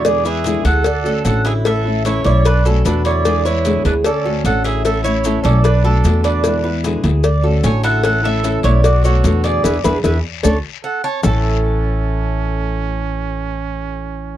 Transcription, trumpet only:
\new Staff \with { instrumentName = "Trumpet" } { \time 4/4 \key a \major \tempo 4 = 150 gis'8 gis'4 a'4. a'8 gis'8 | a'4 e'8 e'8 d'8 cis'8 d'8 e'8 | gis'8 e'4 d'8 cis'4 a'8 gis'8 | a'8 e'4 cis'8 d'8 d'4 d'8~ |
d'8 r2 r8 cis''8 a'8 | a'8 a'4 e'8 fis'8 fis'4 gis'8~ | gis'8 r2 r8 a'8 cis''8 | cis'1~ |
cis'1 | }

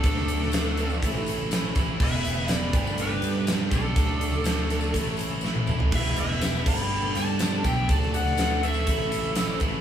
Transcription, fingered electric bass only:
\new Staff \with { instrumentName = "Fingered electric bass" } { \clef bass \time 4/4 \key a \mixolydian \tempo 4 = 122 d,2 a,,4. a,,8 | e,,8 e,,4 g,,4 g,4 b,,8 | d,2 a,,4. a,,8 | e,,8 e,,4 g,,4 g,4 b,,8 |
d,2 a,,4. a,,8 | }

